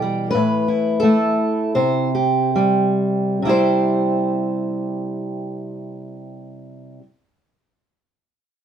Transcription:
steel-string acoustic guitar
Already playing: B2 E3 G4
0.02 G3
0.31 A2 B4
0.68 E4
1.00 A3 A4
1.75 C3 C5
2.15 G4
2.56 G3
3.42 C3 G3
3.47 E4 G4 C5

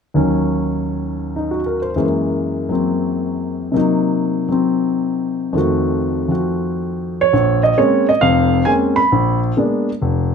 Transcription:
grand piano
0.14 D#2 D#3 F#3 C#4
1.36 D#4
1.51 F#4
1.66 A#4
1.82 C5
1.96 F#2 E3 G#3 A#3
2.69 F#3 A#3 C4
3.72 C3 F#3 A#3
3.77 D#4
4.49 F#3 C4
5.53 F2 D#3 A3
5.58 F#4
6.28 F3 C4 F#4
7.21 C#5
7.33 A#1
7.63 D#5
7.78 G#3 A#3 C4 C#4 C#5
8.09 D#5
8.21 F1 F2 F5
8.65 G#3 A#3 C4 C#4 G#5
8.96 B5
9.12 A#1
9.57 G#3 A#3 B3 D4
10.02 F1

